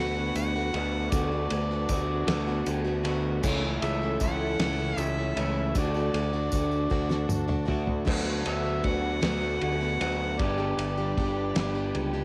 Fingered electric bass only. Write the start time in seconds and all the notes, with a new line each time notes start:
Already playing: D2
0.35 D2
0.74 D2
1.12 D2
1.51 D2
1.90 D2
2.27 D2
2.67 D2
3.44 C#2
3.82 C#2
4.21 C#2
4.59 C#2
4.97 C#2
5.36 C#2
5.76 D2
6.14 D2
6.53 D2
6.91 D2
7.30 D2
8.07 D2
8.46 D2
8.85 D2
9.23 D2
9.62 D2
10.01 D2
10.40 G1
10.77 G1
11.17 G1
11.56 G1
11.95 C#2